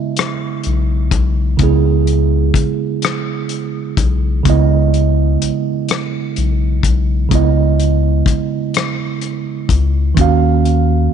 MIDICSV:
0, 0, Header, 1, 4, 480
1, 0, Start_track
1, 0, Tempo, 952381
1, 806, Time_signature, 6, 3, 24, 8
1, 5613, End_track
2, 0, Start_track
2, 0, Title_t, "Tine electric piano"
2, 0, Program_c, 0, 4
2, 0, Control_c, 0, 64, 127
2, 0, Note_on_c, 0, 49, 61
2, 0, Note_on_c, 0, 56, 56
2, 0, Note_on_c, 0, 59, 57
2, 0, Note_on_c, 0, 64, 55
2, 0, Note_on_c, 0, 75, 64
2, 0, Note_on_c, 0, 76, 50
2, 778, Note_off_c, 0, 49, 0
2, 782, Note_off_c, 0, 56, 0
2, 787, Note_off_c, 0, 59, 0
2, 790, Note_off_c, 0, 64, 0
2, 792, Note_on_c, 0, 49, 60
2, 795, Note_off_c, 0, 75, 0
2, 800, Note_on_c, 0, 56, 55
2, 809, Note_on_c, 0, 59, 54
2, 816, Note_on_c, 0, 64, 55
2, 824, Note_on_c, 0, 68, 70
2, 2219, Note_off_c, 0, 49, 0
2, 2223, Note_off_c, 0, 56, 0
2, 2228, Note_off_c, 0, 59, 0
2, 2231, Note_off_c, 0, 64, 0
2, 2234, Note_on_c, 0, 49, 65
2, 2235, Note_off_c, 0, 68, 0
2, 2244, Note_on_c, 0, 56, 59
2, 2251, Note_on_c, 0, 59, 58
2, 2259, Note_on_c, 0, 64, 60
2, 2266, Note_on_c, 0, 75, 71
2, 3660, Note_off_c, 0, 49, 0
2, 3665, Note_off_c, 0, 56, 0
2, 3668, Note_off_c, 0, 59, 0
2, 3672, Note_off_c, 0, 64, 0
2, 3674, Note_on_c, 0, 49, 62
2, 3676, Note_off_c, 0, 75, 0
2, 3681, Note_on_c, 0, 56, 54
2, 3690, Note_on_c, 0, 59, 57
2, 3699, Note_on_c, 0, 64, 56
2, 3705, Note_on_c, 0, 75, 66
2, 5100, Note_off_c, 0, 49, 0
2, 5103, Note_off_c, 0, 56, 0
2, 5108, Note_off_c, 0, 59, 0
2, 5112, Note_off_c, 0, 64, 0
2, 5113, Note_on_c, 0, 51, 60
2, 5116, Note_off_c, 0, 75, 0
2, 5123, Note_on_c, 0, 58, 58
2, 5130, Note_on_c, 0, 61, 58
2, 5132, Control_c, 0, 64, 0
2, 5136, Note_off_c, 0, 76, 0
2, 5138, Note_on_c, 0, 66, 56
2, 5147, Note_on_c, 0, 77, 69
2, 5209, Control_c, 0, 64, 127
2, 5613, Note_off_c, 0, 51, 0
2, 5613, Note_off_c, 0, 58, 0
2, 5613, Note_off_c, 0, 61, 0
2, 5613, Note_off_c, 0, 66, 0
2, 5613, Note_off_c, 0, 77, 0
2, 5613, End_track
3, 0, Start_track
3, 0, Title_t, "Analog synth bass"
3, 0, Program_c, 1, 38
3, 334, Note_on_c, 1, 35, 81
3, 550, Note_off_c, 1, 35, 0
3, 565, Note_on_c, 1, 35, 87
3, 785, Note_off_c, 1, 35, 0
3, 808, Note_on_c, 1, 37, 92
3, 1267, Note_off_c, 1, 37, 0
3, 1283, Note_on_c, 1, 35, 42
3, 1332, Note_off_c, 1, 35, 0
3, 2006, Note_on_c, 1, 35, 82
3, 2226, Note_off_c, 1, 35, 0
3, 2250, Note_on_c, 1, 37, 97
3, 2708, Note_off_c, 1, 37, 0
3, 2734, Note_on_c, 1, 35, 44
3, 2780, Note_off_c, 1, 35, 0
3, 3214, Note_on_c, 1, 35, 81
3, 3430, Note_off_c, 1, 35, 0
3, 3447, Note_on_c, 1, 35, 88
3, 3666, Note_off_c, 1, 35, 0
3, 3689, Note_on_c, 1, 37, 92
3, 4147, Note_off_c, 1, 37, 0
3, 4167, Note_on_c, 1, 37, 42
3, 4215, Note_off_c, 1, 37, 0
3, 4887, Note_on_c, 1, 37, 89
3, 5106, Note_off_c, 1, 37, 0
3, 5130, Note_on_c, 1, 39, 92
3, 5588, Note_off_c, 1, 39, 0
3, 5613, End_track
4, 0, Start_track
4, 0, Title_t, "Drums"
4, 83, Note_on_c, 9, 42, 57
4, 96, Note_on_c, 9, 37, 90
4, 134, Note_off_c, 9, 42, 0
4, 147, Note_off_c, 9, 37, 0
4, 320, Note_on_c, 9, 42, 42
4, 370, Note_off_c, 9, 42, 0
4, 561, Note_on_c, 9, 36, 75
4, 563, Note_on_c, 9, 42, 59
4, 612, Note_off_c, 9, 36, 0
4, 613, Note_off_c, 9, 42, 0
4, 801, Note_on_c, 9, 42, 73
4, 803, Note_on_c, 9, 36, 97
4, 851, Note_off_c, 9, 42, 0
4, 853, Note_off_c, 9, 36, 0
4, 1044, Note_on_c, 9, 42, 41
4, 1095, Note_off_c, 9, 42, 0
4, 1280, Note_on_c, 9, 36, 78
4, 1287, Note_on_c, 9, 42, 61
4, 1331, Note_off_c, 9, 36, 0
4, 1337, Note_off_c, 9, 42, 0
4, 1523, Note_on_c, 9, 42, 55
4, 1536, Note_on_c, 9, 37, 89
4, 1573, Note_off_c, 9, 42, 0
4, 1586, Note_off_c, 9, 37, 0
4, 1760, Note_on_c, 9, 42, 45
4, 1810, Note_off_c, 9, 42, 0
4, 2002, Note_on_c, 9, 36, 83
4, 2004, Note_on_c, 9, 42, 59
4, 2052, Note_off_c, 9, 36, 0
4, 2055, Note_off_c, 9, 42, 0
4, 2245, Note_on_c, 9, 36, 89
4, 2245, Note_on_c, 9, 42, 72
4, 2295, Note_off_c, 9, 36, 0
4, 2295, Note_off_c, 9, 42, 0
4, 2489, Note_on_c, 9, 42, 41
4, 2539, Note_off_c, 9, 42, 0
4, 2730, Note_on_c, 9, 42, 58
4, 2781, Note_off_c, 9, 42, 0
4, 2966, Note_on_c, 9, 42, 56
4, 2979, Note_on_c, 9, 37, 93
4, 3016, Note_off_c, 9, 42, 0
4, 3029, Note_off_c, 9, 37, 0
4, 3207, Note_on_c, 9, 42, 45
4, 3258, Note_off_c, 9, 42, 0
4, 3444, Note_on_c, 9, 36, 78
4, 3449, Note_on_c, 9, 42, 60
4, 3494, Note_off_c, 9, 36, 0
4, 3499, Note_off_c, 9, 42, 0
4, 3685, Note_on_c, 9, 36, 94
4, 3686, Note_on_c, 9, 42, 76
4, 3736, Note_off_c, 9, 36, 0
4, 3737, Note_off_c, 9, 42, 0
4, 3929, Note_on_c, 9, 42, 44
4, 3979, Note_off_c, 9, 42, 0
4, 4163, Note_on_c, 9, 36, 80
4, 4171, Note_on_c, 9, 42, 61
4, 4213, Note_off_c, 9, 36, 0
4, 4221, Note_off_c, 9, 42, 0
4, 4406, Note_on_c, 9, 42, 55
4, 4419, Note_on_c, 9, 37, 86
4, 4457, Note_off_c, 9, 42, 0
4, 4469, Note_off_c, 9, 37, 0
4, 4644, Note_on_c, 9, 42, 44
4, 4695, Note_off_c, 9, 42, 0
4, 4884, Note_on_c, 9, 36, 72
4, 4888, Note_on_c, 9, 42, 59
4, 4934, Note_off_c, 9, 36, 0
4, 4938, Note_off_c, 9, 42, 0
4, 5126, Note_on_c, 9, 36, 100
4, 5127, Note_on_c, 9, 42, 77
4, 5176, Note_off_c, 9, 36, 0
4, 5177, Note_off_c, 9, 42, 0
4, 5370, Note_on_c, 9, 42, 39
4, 5420, Note_off_c, 9, 42, 0
4, 5613, End_track
0, 0, End_of_file